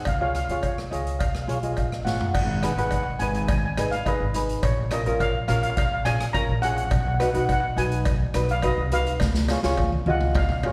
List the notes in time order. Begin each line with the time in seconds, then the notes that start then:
0.05 C#2 F5, kick, closed hi-hat, cowbell
0.14 F5
0.21 F4 G#4 C#5 F5
0.28 F5
0.35 F5, cross-stick, closed hi-hat
0.44 F5
0.49 C#3 F4 G#4 C#5 F5, closed hi-hat
0.63 C#5, kick, closed hi-hat, cowbell
0.78 cross-stick
0.91 C#2 F4 G#4 C#5 D#5, closed hi-hat
1.07 closed hi-hat
1.19 F5, kick, closed hi-hat, cowbell
1.26 F5
1.35 F5, cross-stick
1.42 F5
1.47 B1 F4 G#4 C#5 F5, closed hi-hat
1.56 F5
1.63 F4 G#4 D#5 F5, closed hi-hat
1.72 F5
1.77 A#1 F5, kick, closed hi-hat, cowbell
1.88 F5
1.92 cross-stick
2.05 G#1 F4 G#4 C#5 F#5, snare
2.11 F#5
2.20 F#5, floor tom
2.27 F#5
2.34 G#1 F#5, kick, crash, cowbell
2.43 F#5
2.50 F#5
2.58 F#5
2.63 D#4 G#4 B4 F#5, cross-stick, closed hi-hat, cowbell
2.72 F#5
2.77 G#1 D#4 G#4 B4 F#5, closed hi-hat
2.86 F#5
2.91 F#5, kick, closed hi-hat, cowbell
3.03 F#5
3.19 G#1 D#4 G#4 B4 G#5, closed hi-hat
3.28 G#5
3.34 G#5, closed hi-hat
3.42 G#5
3.48 G#5, kick, closed hi-hat, cowbell
3.57 G#5
3.65 G#5
3.73 G#5
3.77 G#1 D#4 G#4 B4 G#5, cross-stick, closed hi-hat, cowbell
3.91 F5, closed hi-hat
4.06 D#4 G#4 B4 D#5, kick, closed hi-hat, cowbell
4.20 G#1
4.34 D#4 G#4 B4, closed hi-hat
4.49 closed hi-hat
4.63 A#1 C#5, kick, closed hi-hat, cowbell
4.91 C#4 F4 A#4 D#5, cross-stick, closed hi-hat, cowbell
5.06 A#1 C#4 F4 A#4, closed hi-hat
5.20 F5, kick, closed hi-hat, cowbell
5.48 A#1 C#4 F4 A#4 F5, cross-stick, closed hi-hat
5.56 F5
5.63 F5, closed hi-hat
5.70 F5
5.77 F5, kick, closed hi-hat, cowbell
5.85 F5
5.94 F5
6.05 A#1 C#4 F4 G#4 G#5, cross-stick, closed hi-hat, cowbell
6.21 cross-stick, closed hi-hat
6.33 C#4 F4 A#4 A#5, kick, closed hi-hat, cowbell
6.49 A#1
6.62 C#4 F4 G#4 F#5, closed hi-hat
6.69 F#5
6.77 F#5, closed hi-hat
6.84 F#5
6.91 B1 F#5, kick, closed hi-hat, cowbell
7.00 F#5
7.07 F#5
7.14 F#5
7.20 D#4 F#4 B4 F#5, cross-stick, closed hi-hat, cowbell
7.30 D#4 F#5
7.34 B1 F#4 B4 F#5, closed hi-hat
7.45 F#5, cowbell
7.49 F#5, kick, closed hi-hat
7.60 F#5
7.76 B1 D#4 F#4 B4 G#5, closed hi-hat
7.92 closed hi-hat
8.05 kick, closed hi-hat, cowbell
8.34 B1 D#4 F#4 B4, cross-stick, closed hi-hat, cowbell
8.49 F5, closed hi-hat
8.62 D#4 F#4 B4 D#5, kick, closed hi-hat, cowbell
8.78 C2
8.91 D#4 F#4 B4 F5, closed hi-hat
9.07 closed hi-hat
9.20 C#2, kick, snare, cowbell
9.35 snare
9.48 F4 G#4 C#5, snare, cowbell
9.63 C#2 F4 G#4 C#5, snare
9.77 kick, high tom, cowbell
9.92 high tom
10.06 C#2 F4 G#4 D#5 F#5, high tom
10.21 mid tom
10.35 F5, kick, mid tom, cowbell
10.44 F5
10.49 F5, mid tom
10.61 C#2 F4 F5, mid tom, cowbell
10.65 G#4 C#5 F5